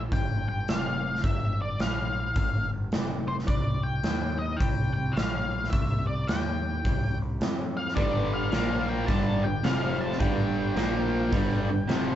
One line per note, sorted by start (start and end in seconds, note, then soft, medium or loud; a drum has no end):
0.12 0.46 G1 medium
0.12 0.47 G5 medium
0.12 kick medium
0.12 open hi-hat soft
0.49 0.67 G1 medium
0.49 0.68 G5 medium
0.68 1.20 F1 medium
0.68 1.24 F5 medium
0.68 snare loud
0.68 open hi-hat soft
1.16 snare soft
1.24 1.76 G1 medium
1.24 1.61 E5 medium
1.24 kick medium
1.24 open hi-hat soft
1.62 1.81 D5 medium
1.79 2.32 A#1 medium
1.79 2.70 F5 medium
1.79 snare medium
1.79 open hi-hat soft
2.36 2.70 G1 medium
2.36 kick medium
2.36 open hi-hat soft
2.73 2.91 G1 medium
2.92 3.44 F1 medium
2.92 snare loud
2.92 open hi-hat soft
3.28 3.33 C5 medium
3.39 snare soft
3.47 4.00 C2 medium
3.47 3.82 D5 medium
3.47 kick medium
3.47 open hi-hat soft
3.83 4.36 G5 loud
4.03 4.56 D#2 medium
4.03 snare medium
4.03 open hi-hat soft
4.39 4.60 D#5 medium
4.57 4.95 C2 medium
4.57 4.92 G5 medium
4.57 kick loud
4.61 open hi-hat medium
4.93 5.15 C2 medium
4.93 5.15 G5 medium
5.13 5.68 A#1 loud
5.13 5.70 F5 medium
5.13 open hi-hat soft
5.17 snare loud
5.64 snare soft
5.70 6.25 C2 medium
5.70 6.06 E5 medium
5.70 kick medium
5.70 open hi-hat soft
6.07 6.28 D5 medium
6.27 6.81 D#2 medium
6.27 7.17 G5 medium
6.27 snare medium
6.27 open hi-hat soft
6.85 7.19 C2 medium
6.85 kick medium
6.85 open hi-hat soft
7.22 7.39 C2 medium
7.41 7.93 F2 medium
7.41 snare loud
7.41 open hi-hat soft
7.77 7.95 F5 medium
7.89 snare soft
7.95 8.49 G1 medium
7.95 8.52 G2 loud
7.95 8.52 D3 loud
7.95 8.52 G3 loud
7.95 8.23 B3 medium
7.95 8.24 D4 medium
7.95 8.24 G4 medium
7.95 8.24 B4 medium
7.95 8.33 D5 medium
7.95 kick medium
7.95 open hi-hat soft
8.34 8.48 B3 medium
8.34 8.48 D4 medium
8.34 8.48 G4 medium
8.34 8.49 D5 medium
8.34 8.86 F5 medium
8.52 9.04 A#1 medium
8.52 9.08 A#2 medium
8.52 9.08 F3 medium
8.52 8.80 A#3 medium
8.52 9.09 A#3 medium
8.52 8.80 F4 medium
8.52 8.80 A#4 medium
8.52 8.80 F5 medium
8.52 snare loud
8.52 open hi-hat soft
8.89 9.03 A#3 medium
8.89 9.03 F4 medium
8.89 9.04 A#4 medium
8.89 9.04 F5 medium
8.89 9.06 G5 medium
9.06 9.43 G1 medium
9.06 9.44 G2 medium
9.06 9.44 D3 medium
9.06 9.45 G3 medium
9.06 9.36 D4 medium
9.06 9.36 G4 medium
9.06 9.36 B4 medium
9.06 9.42 A5 medium
9.06 kick medium
9.06 open hi-hat soft
9.10 9.36 D5 loud
9.43 9.62 G1 medium
9.43 9.61 G2 medium
9.43 9.61 D3 medium
9.43 9.60 D4 medium
9.43 9.60 G4 medium
9.43 9.60 B4 medium
9.43 9.60 D5 medium
9.43 9.65 G5 medium
9.63 10.16 F1 medium
9.63 10.19 F2 medium
9.63 10.20 C3 medium
9.63 10.21 F3 medium
9.63 9.92 C4 medium
9.63 9.92 F4 medium
9.63 9.92 C5 medium
9.63 9.99 F5 medium
9.63 9.92 F5 medium
9.63 snare loud
9.63 open hi-hat soft
10.01 10.15 C4 medium
10.01 10.16 F4 medium
10.01 10.16 C5 medium
10.01 10.16 F5 medium
10.01 10.20 A5 medium
10.12 snare soft
10.19 10.73 G1 medium
10.19 10.76 G2 medium
10.19 10.75 D3 medium
10.19 10.76 G3 loud
10.19 10.47 D4 medium
10.19 10.47 G4 medium
10.19 10.47 B4 medium
10.19 10.47 D5 loud
10.19 12.15 G5 loud
10.19 kick loud
10.19 open hi-hat soft
10.56 10.71 D4 medium
10.56 10.71 G4 medium
10.56 10.72 B4 medium
10.56 10.72 D5 medium
10.76 11.29 A#1 medium
10.76 11.32 A#2 medium
10.76 11.32 F3 loud
10.76 11.03 A#3 medium
10.76 11.33 A#3 loud
10.76 11.03 F4 medium
10.76 11.04 A#4 medium
10.76 11.04 F5 medium
10.76 snare loud
10.76 open hi-hat soft
11.14 11.28 A#3 medium
11.14 11.28 F4 medium
11.14 11.28 A#4 medium
11.14 11.28 F5 medium
11.32 11.67 G1 medium
11.32 11.68 G2 medium
11.32 11.69 D3 medium
11.32 11.69 G3 medium
11.32 11.60 B3 medium
11.32 11.60 D4 medium
11.32 11.60 G4 loud
11.32 11.60 B4 loud
11.32 kick medium
11.32 open hi-hat soft
11.69 11.88 G1 medium
11.69 11.85 G2 medium
11.69 11.85 D3 medium
11.69 11.84 B3 medium
11.69 11.84 D4 medium
11.69 11.84 G4 medium
11.69 11.84 B4 medium
11.88 12.15 F1 medium
11.88 12.15 F2 medium
11.88 12.15 C3 medium
11.88 12.15 F3 medium
11.88 12.15 C4 medium
11.88 12.15 F4 medium
11.88 12.15 C5 medium
11.88 snare loud
11.88 open hi-hat soft